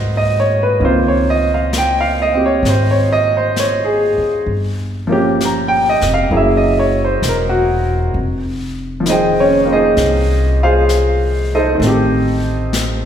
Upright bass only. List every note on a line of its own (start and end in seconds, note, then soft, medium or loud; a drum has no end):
0.00 0.77 G#2 medium
0.81 2.61 C#2 medium
2.63 4.13 G#1 medium
4.18 muted upright bass stroke soft
4.46 5.97 G1 medium
6.02 6.30 F1 medium
6.31 7.19 F#1 medium
7.22 8.10 E1 medium
8.14 9.94 F1 medium
9.97 11.77 C2 medium
11.80 13.05 A1 medium